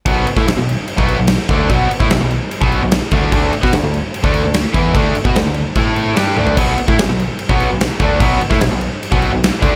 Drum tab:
CC |x-x-x-x-x-x-x-x-|x-x-x-x-x-x-x-x-|x-x-x-x-x-x-x-x-|x-x-x-x-x-x-x---|
SD |---oo-------o---|----o-------o---|---oo-------o---|----o-------o---|
T1 |----------------|----------------|----------------|--------------o-|
FT |----------------|----------------|----------------|---------------o|
BD |o--o-----o----o-|o--o-----o----o-|o--o-----o----o-|o--o----o-------|

CC |x-x-x-x-x-x-x-x-|x-x-x-x-x-x-x-x-|
SD |----o-------o---|---oo-------o---|
T1 |----------------|----------------|
FT |----------------|----------------|
BD |o--o-----o----o-|o--o-----o----o-|